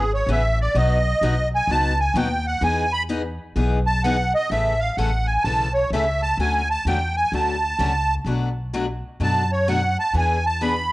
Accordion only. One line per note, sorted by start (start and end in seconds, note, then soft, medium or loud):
0.00 0.12 G#4 medium
0.14 0.29 C#5 medium
0.32 0.59 E5 medium
0.62 0.76 D5 medium
0.77 1.49 D#5 medium
1.55 1.70 G#5 loud
1.71 1.99 A5 loud
2.00 2.16 G#5 medium
2.18 2.46 G5 medium
2.47 2.63 F#5 medium
2.64 2.92 G#5 medium
2.93 3.03 B5 loud
3.87 4.03 A5 loud
4.04 4.33 F#5 medium
4.35 4.50 D#5 loud
4.51 4.80 E5 medium
4.80 4.96 F5 medium
4.97 5.26 F#5 medium
5.27 5.43 G#5 medium
5.44 5.73 A5 loud
5.74 5.90 C#5 medium
5.93 6.21 E5 medium
6.22 6.38 A5 loud
6.41 6.69 G#5 medium
6.71 6.86 A5 loud
6.88 7.16 G5 medium
7.17 7.32 G#5 loud
7.35 8.15 A5 medium
9.23 9.51 A5 medium
9.52 9.68 C#5 medium
9.69 9.97 F#5 medium
9.99 10.15 A5 loud
10.17 10.45 G#5 medium
10.46 10.61 A5 loud
10.62 10.91 B5 medium